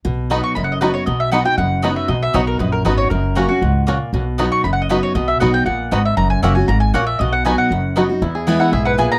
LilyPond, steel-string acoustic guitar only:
\new Staff \with { instrumentName = "Steel-string acoustic guitar" } { \time 4/4 \key b \major \tempo 4 = 235 << { r4 <fis b dis' fis'>4 r4 <fis b dis' fis'>4 | r4 <fis b dis' fis'>8 <dis' fis'>8 r4 <fis b dis' fis'>4 | r4 <fis b dis' fis'>4 r4 <fis b dis' fis'>4 | r4 <fis ais cis' fis'>8 <cis' fis'>8 r2 |
r4 <fis b dis' fis'>4 r4 <fis b dis' fis'>4 | r4 <fis b dis' fis'>4 r2 | r4 <fis ais cis' fis'>8 <cis' fis'>8 r2 | r4 <fis b dis' fis'>4 r4 <fis b dis' fis'>8 <dis' fis'>8 |
r4 <e gis b e'>4 r2 | } \\ { b,2 fis,2 | b,2 fis,2 | b,2 fis,2 | fis,2 gis,4 ais,4 |
b,2 fis,2 | b,2 ais,4 gis,4 | fis,2 gis,4 ais,4 | b,2 fis,2 |
e,2 gis,4 ais,4 | } >> }